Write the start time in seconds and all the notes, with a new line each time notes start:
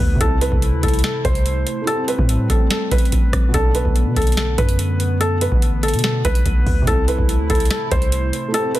Already playing: B2 D3 A3 B3 D4 A4 B4
0.00 D2, kick
0.15 C3 C4
0.21 C2 C3 E4 A4, kick, closed hi-hat
0.26 A4
0.41 B4, closed hi-hat
0.52 C2, kick
0.62 closed hi-hat
0.73 D2
0.83 C2 A4, kick, closed hi-hat
0.88 closed hi-hat
0.94 closed hi-hat
0.99 closed hi-hat
1.04 A4, snare, closed hi-hat
1.25 C2 C5, kick, closed hi-hat
1.35 closed hi-hat
1.46 closed hi-hat
1.67 closed hi-hat
1.82 A3 E4
1.87 G3 C4 G4 A4, closed hi-hat
1.93 C4
2.08 B4, closed hi-hat
2.19 A2, kick
2.29 closed hi-hat
2.50 A1 A4, kick, closed hi-hat
2.71 A4, snare, closed hi-hat
2.91 A1 B4, kick, closed hi-hat
2.98 closed hi-hat
3.05 closed hi-hat
3.12 A1, kick, closed hi-hat
3.33 A1, kick, cross-stick, closed hi-hat
3.49 B2 B3
3.54 B1 D3 B3 D4 A4, kick, closed hi-hat
3.60 A4
3.75 B4, closed hi-hat
3.85 B1, kick
3.96 closed hi-hat
4.06 B2
4.16 B1 A4, kick, closed hi-hat
4.22 closed hi-hat
4.27 closed hi-hat
4.32 closed hi-hat
4.37 A4, snare, closed hi-hat
4.58 F#2 B4, kick, closed hi-hat
4.69 closed hi-hat
4.79 closed hi-hat
5.00 closed hi-hat
5.21 A4, closed hi-hat
5.41 B4, closed hi-hat
5.52 A1, kick
5.62 closed hi-hat
5.83 A4, closed hi-hat
5.88 closed hi-hat
5.94 B2, closed hi-hat
5.99 closed hi-hat
6.04 A4, snare
6.25 B1 B4, kick, closed hi-hat
6.35 closed hi-hat
6.46 B1, kick, closed hi-hat
6.66 D2, kick, open hi-hat
6.82 C3 C4
6.87 C2 C3 A3 E4 A4, kick, closed hi-hat
6.93 A4
7.08 B4, closed hi-hat
7.19 C2, kick
7.29 closed hi-hat
7.39 D2
7.50 C2 A4, kick, closed hi-hat
7.55 closed hi-hat
7.60 closed hi-hat
7.65 closed hi-hat
7.71 A4, snare, closed hi-hat
7.91 C2 C5, kick, closed hi-hat
8.02 closed hi-hat
8.12 closed hi-hat
8.33 closed hi-hat
8.48 A3 E4
8.54 G3 C4 G4 A4, closed hi-hat
8.59 C4
8.75 B4, closed hi-hat